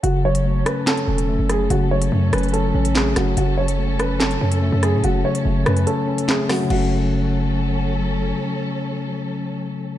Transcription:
<<
  \new Staff \with { instrumentName = "Grand piano" } { \time 4/4 \key fis \minor \tempo 4 = 144 fis'8 cis''4 b'8 a'4. gis'8 | fis'8 cis''4 b'8 a'4 gis'8 fis'8 | fis'8 cis''4 b'8 a'4. gis'8 | fis'8 cis''4 b'8 a'4 gis'8 fis'8 |
fis'2. r4 | r1 | }
  \new Staff \with { instrumentName = "String section" } { \time 4/4 \key fis \minor <fis cis' a'>1~ | <fis cis' a'>1~ | <fis cis' a'>1~ | <fis cis' a'>1 |
<fis cis' a'>1~ | <fis cis' a'>1 | }
  \new Staff \with { instrumentName = "Tine electric piano" } { \time 4/4 \key fis \minor cis8 fis8 a8 cis'8 cis''8 cis'8 a8 fis8 | cis8 fis8 a8 cis'8 cis''8 cis'8 a8 fis8 | cis8 fis8 a8 cis'8 cis''8 cis'8 a8 fis8 | cis8 fis8 a8 cis'8 cis''8 cis'8 a8 fis8 |
<cis fis a cis'>1~ | <cis fis a cis'>1 | }
  \new Staff \with { instrumentName = "808-style bass" } { \clef bass \time 4/4 \key fis \minor fis,,4. r4 e,,8. fis,,8. | fis,,4 fis,8 fis,,4 a,,4 fis,,8 | fis,,2~ fis,,8 fis,8. fis,8 a,16 | fis,,8 r8 fis,,8 fis,8 r2 |
fis,,1 | r1 | }
  \new DrumStaff \with { instrumentName = "Drums" } \drummode { \time 4/4 hh8. hh16 r8 <hh ss>8 <hc hh sn>16 hh8 hh16 r8 <hh ss>8 | hh8. hh16 r8 <hh ss>32 hh32 hh32 hh32 hh8. hh16 <hc sn>8 <hh ss sn>8 | hh8. hh16 r8 <hh ss>8 <hc hh sn>16 hh8 hh16 r8 <hh ss>8 | hh8. hh16 r8 <hh ss>16 hh16 hh8. hh16 <hc sn>8 <hho ss sn>8 |
cymc4 r4 r4 r4 | r4 r4 r4 r4 | }
>>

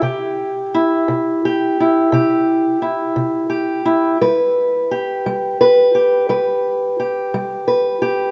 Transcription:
\new Staff \with { instrumentName = "Steel-string acoustic guitar" } { \time 12/8 \key c \major \tempo 4. = 58 << { g'4 e'4 g'8 e'8 g'4 e'4 g'8 e'8 | b'4 g'4 b'8 g'8 b'4 g'4 b'8 g'8 | } \\ { c4 r8 c4 r8 c4 r8 c4 r8 | g4 r8 g4 r8 g4 r8 g4 r8 | } >> }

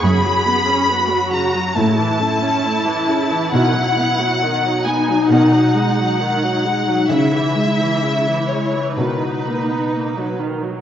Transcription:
<<
  \new Staff \with { instrumentName = "Violin section" } { \time 4/4 \key b \major \tempo 4 = 67 b''4. ais''8 a''2 | fis''4. gis''8 fis''2 | e''4. cis''8 b'4. r8 | }
  \new Staff \with { instrumentName = "Harp" } { \time 4/4 \key b \major <fis, b'>8 cis'8 b'8 fis'8 a,8 cis'8 cis''8 e'8 | b,8 b8 dis''8 dis'8 b,8 gis8 dis''8 dis'8 | cis8 gis8 cis''8 e'8 b,8 b8 dis''8 fis'8 | }
  \new Staff \with { instrumentName = "Viola section" } { \clef bass \time 4/4 \key b \major << { gis'4 fis'4 e'2~ | e'4 dis'2. | e'2 dis'2 | } \\ { cis16 fis16 b16 cis'16 b16 fis16 cis16 fis16 cis16 e16 a16 cis'16 a16 e16 cis16 e16 | dis16 fis16 b16 fis16 dis16 fis16 b16 fis16 dis16 fis16 gis16 fis16 dis16 fis16 gis16 fis16 | cis16 e16 gis16 e16 cis16 e16 gis16 e16 dis16 fis16 ais16 b16 ais16 fis16 dis16 fis16 | } >> }
  \new Staff \with { instrumentName = "Cello section" } { \clef bass \time 4/4 \key b \major fis,4 r4 a,4 r4 | b,4 r4 b,4 r4 | cis4 r4 b,4 r4 | }
>>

